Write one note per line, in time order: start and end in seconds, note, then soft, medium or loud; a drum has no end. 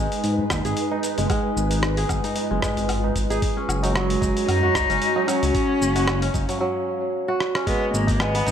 0.00 1.17 G#3 medium
0.00 3.38 G#3 medium
0.00 0.91 D#4 medium
0.00 1.28 D#4 medium
0.00 0.11 F#4 medium
0.00 0.65 G#4 loud
0.00 3.38 B4 medium
0.12 open hi-hat soft
0.12 tabla tin medium
0.12 shaker soft
0.24 0.44 G#2 loud
0.24 open hi-hat medium
0.24 shaker soft
0.38 tabla ge medium
0.50 0.61 D#2 medium
0.50 kick medium
0.50 cross-stick medium
0.50 open hi-hat soft
0.50 tabla na medium
0.50 low woodblock medium
0.50 shaker medium
0.65 0.74 G#1 medium
0.65 1.97 G#4 loud
0.65 open hi-hat soft
0.65 shaker soft
0.77 open hi-hat medium
0.77 shaker soft
0.91 2.24 D#4 medium
0.91 tabla na medium
1.03 open hi-hat soft
1.03 tabla na medium
1.03 shaker medium
1.18 1.27 F#1 medium
1.18 1.29 G#3 medium
1.18 open hi-hat soft
1.18 tabla tin soft
1.18 shaker soft
1.29 2.49 G#3 loud
1.29 3.40 F4 medium
1.29 kick loud
1.29 open hi-hat medium
1.29 low woodblock medium
1.29 shaker soft
1.57 2.05 G#1 loud
1.57 shaker medium
1.71 open hi-hat soft
1.71 tabla na medium
1.71 shaker soft
1.83 cross-stick medium
1.83 shaker soft
1.97 3.30 G#4 loud
1.97 open hi-hat soft
2.09 2.20 G#1 medium
2.09 kick loud
2.09 open hi-hat soft
2.09 tabla na medium
2.09 tabla ge medium
2.09 low woodblock medium
2.09 shaker medium
2.24 3.86 D#4 medium
2.24 open hi-hat soft
2.24 tabla tin soft
2.24 shaker soft
2.36 open hi-hat medium
2.36 tabla tin medium
2.36 shaker soft
2.51 2.60 F#1 medium
2.51 2.61 G#3 medium
2.62 3.47 G#3 loud
2.62 kick medium
2.62 cross-stick medium
2.62 open hi-hat soft
2.62 tabla ge medium
2.62 shaker medium
2.77 3.11 G#1 medium
2.77 open hi-hat soft
2.77 tabla na soft
2.77 shaker soft
2.89 open hi-hat soft
2.89 low woodblock medium
2.89 shaker soft
3.04 tabla na medium
3.16 3.27 G#1 medium
3.16 kick medium
3.16 open hi-hat soft
3.16 shaker medium
3.30 3.39 G#1 medium
3.30 4.67 G#4 loud
3.30 open hi-hat soft
3.30 tabla na medium
3.30 shaker soft
3.42 6.58 G#3 medium
3.42 5.52 F#4 medium
3.42 6.58 C#5 medium
3.42 kick loud
3.42 open hi-hat medium
3.42 shaker soft
3.57 4.89 C#4 medium
3.57 tabla tin soft
3.68 4.17 F#1 loud
3.68 low woodblock medium
3.68 shaker medium
3.83 3.94 F#3 medium
3.83 open hi-hat soft
3.83 tabla na medium
3.83 shaker soft
3.89 3.97 A#3 medium
3.95 5.15 F#3 loud
3.95 4.48 G#3 medium
3.95 cross-stick medium
3.95 shaker soft
4.10 open hi-hat medium
4.21 4.33 F#1 medium
4.21 kick loud
4.21 open hi-hat soft
4.21 tabla na medium
4.21 shaker medium
4.37 open hi-hat soft
4.37 tabla tin medium
4.37 shaker soft
4.48 4.69 F#2 loud
4.48 5.29 D#4 loud
4.48 open hi-hat medium
4.48 low woodblock medium
4.48 shaker soft
4.63 5.95 F#4 loud
4.63 tabla ge medium
4.74 4.86 C#2 medium
4.74 kick medium
4.74 cross-stick medium
4.74 open hi-hat soft
4.74 tabla na medium
4.74 shaker medium
4.89 4.98 F#1 medium
4.89 6.22 C#4 medium
4.89 open hi-hat soft
4.89 shaker soft
5.02 open hi-hat medium
5.02 shaker soft
5.16 5.26 F#3 medium
5.16 tabla na medium
5.27 6.47 F#3 loud
5.27 6.61 C#4 loud
5.27 open hi-hat medium
5.27 tabla na medium
5.27 low woodblock medium
5.27 shaker medium
5.43 5.52 C#2 medium
5.43 open hi-hat soft
5.43 tabla tin medium
5.43 shaker soft
5.55 6.60 F5 medium
5.55 kick loud
5.55 open hi-hat medium
5.55 shaker soft
5.69 tabla tin soft
5.81 6.29 F#1 loud
5.81 shaker medium
5.96 7.28 F#4 loud
5.96 open hi-hat soft
5.96 tabla na medium
5.96 shaker soft
6.08 cross-stick medium
6.08 low woodblock medium
6.08 shaker soft
6.22 7.54 C#4 medium
6.22 open hi-hat medium
6.22 tabla tin soft
6.34 6.45 F#1 medium
6.34 kick medium
6.34 open hi-hat soft
6.34 tabla na medium
6.34 tabla ge medium
6.34 shaker medium
6.48 6.59 F#3 medium
6.48 open hi-hat soft
6.48 tabla tin medium
6.48 shaker soft
6.61 7.72 F#3 medium
7.28 8.51 F#4 loud
7.40 cross-stick medium
7.55 8.51 C#4 medium
7.55 cross-stick medium
7.67 8.19 G#3 loud
7.67 8.51 G#3 medium
7.67 7.92 B3 loud
7.67 8.51 D#4 medium
7.67 8.51 B4 medium
7.67 kick loud
7.67 open hi-hat medium
7.67 shaker soft
7.81 tabla tin medium
7.94 8.42 G#1 medium
7.94 8.22 A#3 medium
7.94 shaker medium
8.07 kick loud
8.07 open hi-hat soft
8.07 tabla na medium
8.07 tabla tin medium
8.07 shaker soft
8.20 8.51 G#3 loud
8.20 8.51 B3 loud
8.20 cross-stick medium
8.20 low woodblock medium
8.20 shaker soft
8.35 8.51 B3 loud
8.35 open hi-hat medium
8.46 8.51 G#1 medium
8.46 8.51 D#4 medium
8.46 open hi-hat soft
8.46 tabla na medium
8.46 shaker medium